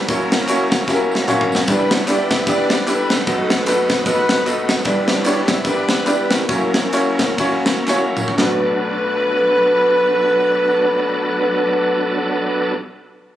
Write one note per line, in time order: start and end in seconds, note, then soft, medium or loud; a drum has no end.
0.00 1.24 C#4 medium
0.00 1.24 E4 medium
0.00 1.28 A#4 loud
0.08 1.64 F#1 medium
0.08 1.64 F#2 medium
0.08 1.65 F#3 medium
0.08 1.64 A#3 medium
0.08 0.40 A#3 medium
0.08 1.65 C#4 medium
0.08 0.41 C#4 medium
0.08 1.65 E4 medium
0.08 0.41 E4 medium
0.08 0.41 F#4 medium
0.08 1.64 A#4 medium
0.08 0.41 C#5 medium
0.08 kick loud
0.08 ride medium
0.08 tambourine medium
0.32 snare loud
0.32 ride medium
0.32 tambourine medium
0.48 0.80 A#3 medium
0.48 0.80 C#4 medium
0.48 0.80 E4 medium
0.48 0.80 F#4 medium
0.48 0.80 C#5 loud
0.48 clap loud
0.48 ride medium
0.48 tambourine loud
0.72 kick medium
0.72 snare loud
0.72 ride medium
0.72 tambourine medium
0.88 1.20 A#3 medium
0.88 1.20 C#4 medium
0.88 1.20 E4 medium
0.88 1.20 F#4 medium
0.88 0.94 G4 medium
0.88 kick loud
0.88 snare medium
0.88 tambourine medium
0.94 1.23 A#4 loud
1.11 snare medium
1.11 tambourine medium
1.28 1.59 A#3 loud
1.28 1.59 C#4 medium
1.28 1.60 E4 medium
1.28 1.60 F#4 medium
1.28 1.60 C#5 medium
1.28 clap medium
1.28 mid tom medium
1.28 tambourine medium
1.41 floor tom loud
1.52 snare medium
1.52 tambourine medium
1.68 3.23 G1 medium
1.68 3.23 G2 medium
1.68 3.24 G3 medium
1.68 3.24 B3 medium
1.68 2.00 B3 medium
1.68 3.23 D4 medium
1.68 2.44 D4 medium
1.68 2.00 D4 medium
1.68 3.23 E4 medium
1.68 2.00 E4 medium
1.68 2.44 E4 medium
1.68 2.00 G4 medium
1.68 3.23 B4 medium
1.68 1.90 B4 loud
1.68 2.00 D5 medium
1.68 kick loud
1.68 ride medium
1.68 tambourine medium
1.91 2.09 C#5 medium
1.91 snare loud
1.91 ride medium
1.91 tambourine medium
2.07 2.39 B3 medium
2.07 2.39 D4 medium
2.07 2.39 E4 medium
2.07 2.39 G4 medium
2.07 2.40 D5 medium
2.07 2.30 D5 loud
2.07 clap loud
2.07 ride medium
2.07 tambourine loud
2.31 2.49 E5 loud
2.31 kick medium
2.31 snare loud
2.31 ride medium
2.31 tambourine medium
2.47 2.79 B3 medium
2.47 2.79 D4 medium
2.47 2.79 E4 medium
2.47 2.79 G4 medium
2.47 2.88 B4 medium
2.47 2.79 D5 medium
2.47 2.88 D5 loud
2.47 kick loud
2.47 ride medium
2.47 tambourine medium
2.70 snare loud
2.70 ride medium
2.70 tambourine medium
2.87 3.19 B3 medium
2.87 3.19 D4 medium
2.87 3.19 E4 medium
2.87 3.19 G4 medium
2.87 3.19 A4 medium
2.87 3.11 B4 loud
2.87 clap medium
2.87 ride medium
2.87 tambourine medium
3.10 3.67 D#4 medium
3.10 3.48 A4 medium
3.10 snare loud
3.10 ride medium
3.10 tambourine medium
3.27 4.82 F#1 medium
3.27 4.82 F#2 medium
3.27 4.83 A3 medium
3.27 3.58 B3 medium
3.27 4.83 B3 medium
3.27 3.58 D#4 medium
3.27 4.83 D#4 medium
3.27 4.82 F#4 medium
3.27 3.58 F#4 medium
3.27 3.59 A4 medium
3.27 4.83 B4 medium
3.27 3.59 D#5 medium
3.27 kick loud
3.27 ride medium
3.27 tambourine medium
3.50 3.65 A4 medium
3.50 snare loud
3.50 ride medium
3.50 tambourine medium
3.66 3.98 B3 medium
3.66 3.72 D4 medium
3.66 4.06 D#4 medium
3.66 3.98 F#4 medium
3.66 3.98 A4 medium
3.66 3.98 B4 medium
3.66 4.04 B4 loud
3.66 clap loud
3.66 ride medium
3.66 tambourine loud
3.71 4.00 D#4 medium
3.90 kick medium
3.90 snare loud
3.90 ride medium
3.90 tambourine medium
4.06 4.38 B3 medium
4.06 4.38 D#4 medium
4.06 4.82 D#4 medium
4.06 4.38 F#4 medium
4.06 4.38 A4 medium
4.06 4.65 B4 loud
4.06 4.38 D#5 medium
4.06 kick loud
4.06 ride medium
4.06 tambourine medium
4.29 snare loud
4.29 ride medium
4.29 tambourine medium
4.46 4.77 B3 medium
4.46 4.77 D#4 medium
4.46 4.77 F#4 medium
4.46 4.77 A4 medium
4.46 4.78 D#5 medium
4.46 clap medium
4.46 ride medium
4.46 tambourine medium
4.69 snare loud
4.69 ride medium
4.69 tambourine medium
4.85 6.46 G1 medium
4.85 6.46 G2 medium
4.85 6.46 G3 medium
4.85 6.46 B3 medium
4.85 5.17 B3 medium
4.85 6.46 D4 medium
4.85 5.17 D4 medium
4.85 5.62 D4 medium
4.85 6.46 E4 medium
4.85 5.17 E4 medium
4.85 5.62 E4 medium
4.85 5.17 G4 medium
4.85 6.46 B4 medium
4.85 5.07 B4 medium
4.85 5.17 D5 medium
4.85 kick loud
4.85 ride medium
4.85 tambourine medium
5.08 5.25 C#5 medium
5.08 snare loud
5.08 ride medium
5.08 tambourine medium
5.24 5.57 B3 medium
5.24 5.57 D4 medium
5.24 5.57 E4 medium
5.24 5.58 G4 medium
5.24 5.58 C#5 medium
5.24 5.48 D5 medium
5.24 clap loud
5.24 ride medium
5.24 tambourine loud
5.47 5.65 E5 loud
5.47 kick medium
5.47 snare loud
5.47 ride medium
5.47 tambourine medium
5.64 5.98 B3 medium
5.64 5.98 D4 medium
5.64 5.98 E4 medium
5.64 5.98 G4 medium
5.64 5.72 A#4 medium
5.64 6.04 B4 medium
5.64 6.06 D5 medium
5.64 kick loud
5.64 ride medium
5.64 tambourine medium
5.71 6.01 B4 medium
5.89 snare loud
5.89 ride medium
5.89 tambourine medium
6.05 6.40 B3 medium
6.05 6.40 D4 medium
6.05 6.40 E4 medium
6.05 6.40 G4 medium
6.05 6.31 B4 loud
6.05 6.40 D5 medium
6.05 clap medium
6.05 ride medium
6.05 tambourine medium
6.30 7.83 C#4 medium
6.30 7.84 E4 medium
6.30 7.87 A#4 medium
6.30 snare loud
6.30 ride medium
6.30 tambourine medium
6.48 8.35 F#1 medium
6.48 8.34 F#2 medium
6.48 8.35 F#3 medium
6.48 6.55 A3 medium
6.48 8.35 A#3 medium
6.48 6.84 C#4 medium
6.48 8.35 C#4 medium
6.48 8.34 E4 medium
6.48 6.84 E4 medium
6.48 6.84 F#4 medium
6.48 8.35 A#4 medium
6.48 6.84 C#5 medium
6.48 kick loud
6.48 ride medium
6.48 tambourine medium
6.53 6.86 A#3 medium
6.74 snare loud
6.74 ride medium
6.74 tambourine medium
6.93 7.29 A#3 medium
6.93 7.29 C#4 medium
6.93 7.29 E4 medium
6.93 7.29 F#4 medium
6.93 7.30 C#5 loud
6.93 clap loud
6.93 ride medium
6.93 tambourine medium
7.19 kick medium
7.19 snare loud
7.19 ride medium
7.19 tambourine medium
7.38 7.77 A#3 medium
7.38 7.77 C#4 medium
7.38 7.77 E4 medium
7.38 7.77 F#4 medium
7.38 7.77 C#5 loud
7.38 kick loud
7.38 ride medium
7.38 tambourine medium
7.66 snare loud
7.66 ride medium
7.66 tambourine medium
7.88 8.28 A#3 medium
7.88 8.28 C#4 medium
7.88 8.28 E4 medium
7.88 8.28 F#4 medium
7.88 8.28 C#5 loud
7.88 snare medium
7.88 clap medium
7.88 tambourine medium
8.17 mid tom medium
8.17 tambourine medium
8.28 floor tom loud
8.37 12.75 B1 medium
8.37 12.74 F#3 medium
8.37 12.73 A3 medium
8.37 12.74 B3 medium
8.37 12.74 D4 medium
8.37 12.76 F#4 medium
8.37 12.74 A4 medium
8.37 12.74 B4 loud
8.37 snare loud
8.37 clap medium
8.42 12.77 B4 medium